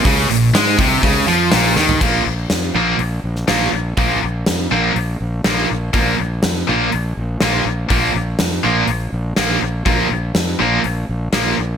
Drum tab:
CC |----------------|x---------------|----------------|----------------|
HH |o-o-o-o-o-o-o---|----o---o---o---|o---o---o---o---|o---o---o---o---|
SD |----o-------o-o-|----o------oo---|----o-------o---|----o-------o---|
FT |---------------o|----------------|----------------|----------------|
BD |o-----o-o-------|o---------------|o---------------|o---------------|

CC |----------------|----------------|
HH |o---o---o---o---|o---o---o---o---|
SD |----o-------o---|----o-------o---|
FT |----------------|----------------|
BD |o---------------|o---------------|